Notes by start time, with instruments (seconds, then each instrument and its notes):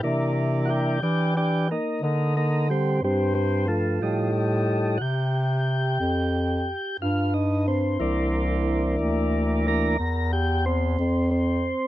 0.03 bass clarinet C3, tonewheel organ E3 A#3 D4
0.65 tonewheel organ D4 F#4
0.70 tonewheel organ G4
1.02 bass clarinet E3, tonewheel organ D4 G4
1.37 tonewheel organ D4 G4
1.71 tonewheel organ A#3 D#4
2.02 bass clarinet D3, tonewheel organ A#3 D#4
2.37 tonewheel organ A#3 D#4
2.70 tonewheel organ G3 C4
3.02 bass clarinet G2, tonewheel organ G3 C4
3.35 tonewheel organ G3 C4
3.68 tonewheel organ F3 A3
4.01 bass clarinet A2, tonewheel organ G3 A3 D#4
4.98 bass clarinet C3, tonewheel organ F#4
5.02 tonewheel organ G4
6.00 bass clarinet F2
7.00 bass clarinet G2, tonewheel organ F4
7.34 tonewheel organ D#4
7.68 tonewheel organ C4
8.00 bass clarinet C2, tonewheel organ E3 A#3 D4
8.99 bass clarinet D2
9.67 tonewheel organ E3 A#3 D4 A#4
9.99 bass clarinet E2
10.33 tonewheel organ G4
10.66 tonewheel organ C4
10.99 bass clarinet F2
11.31 tonewheel organ C4